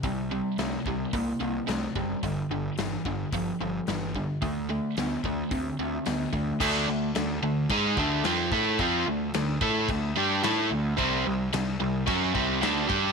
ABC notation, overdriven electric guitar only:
X:1
M:4/4
L:1/8
Q:1/4=110
K:Clyd
V:1 name="Overdriven electric guitar" clef=bass
[C,G,] [C,G,] [C,A,] [C,G,] [C,_B,] [C,B,] [C,A,] [C,G,] | [G,,D,] [G,,D,] [G,,E,] [G,,D,] [G,,=F,] [G,,F,] [G,,E,] [G,,D,] | [D,A,] [D,A,] [D,B,] [D,A,] [D,C] [D,C] [D,B,] [D,A,] | [D,A,D] [D,A,] [D,A,] [D,A,] [^G,_E^G] [D,A,D] [=F,C=F] [A,=EA] |
[=F,C=F] [D,A,] [D,A,] [A,EA] [D,A,] [G,DG] [A,EA] [D,A,] | [C,G,C] [C,G,] [C,G,] [C,G,] [F,^CF] [=C,G,=C] [D,A,D] [G,DG] |]